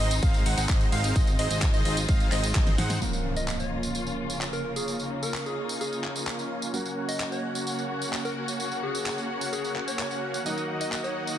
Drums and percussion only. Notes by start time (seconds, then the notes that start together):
0.11 closed hi-hat, tambourine
0.23 kick, closed hi-hat, tambourine
0.34 closed hi-hat, tambourine
0.46 open hi-hat
0.58 closed hi-hat, tambourine
0.69 kick, clap, closed hi-hat, tambourine
0.81 closed hi-hat, tambourine
0.92 open hi-hat
1.04 closed hi-hat, tambourine
1.16 kick, closed hi-hat, tambourine
1.27 closed hi-hat, tambourine
1.39 open hi-hat
1.51 closed hi-hat, tambourine
1.62 kick, clap, closed hi-hat, tambourine
1.74 closed hi-hat, tambourine
1.85 open hi-hat
1.97 closed hi-hat, tambourine
2.09 kick, closed hi-hat, tambourine
2.20 closed hi-hat, tambourine
2.32 clap, open hi-hat
2.44 closed hi-hat, tambourine
2.55 kick, snare, clap, closed hi-hat, tambourine
2.67 snare, closed hi-hat, tambourine
2.78 snare, open hi-hat
2.90 snare, closed hi-hat, tambourine
3.02 tambourine
3.13 tambourine
3.36 tambourine
3.48 clap, tambourine
3.60 tambourine
3.83 tambourine
3.95 tambourine
4.06 tambourine
4.30 tambourine
4.41 clap, tambourine
4.53 tambourine
4.76 tambourine
4.88 tambourine
4.99 tambourine
5.23 tambourine
5.34 clap, tambourine
5.46 tambourine
5.69 tambourine
5.81 tambourine
5.92 tambourine
6.04 clap
6.16 tambourine
6.27 clap, tambourine
6.39 tambourine
6.62 tambourine
6.74 tambourine
6.85 tambourine
7.09 tambourine
7.20 clap, tambourine
7.32 tambourine
7.55 tambourine
7.67 tambourine
7.78 tambourine
8.02 tambourine
8.13 clap, tambourine
8.25 tambourine
8.48 tambourine
8.60 tambourine
8.71 tambourine
8.95 tambourine
9.06 clap, tambourine
9.18 tambourine
9.41 tambourine
9.53 tambourine
9.64 tambourine
9.76 clap
9.88 tambourine
9.99 clap, tambourine
10.11 tambourine
10.34 tambourine
10.46 tambourine
10.57 tambourine
10.81 tambourine
10.92 clap, tambourine
11.04 tambourine
11.27 tambourine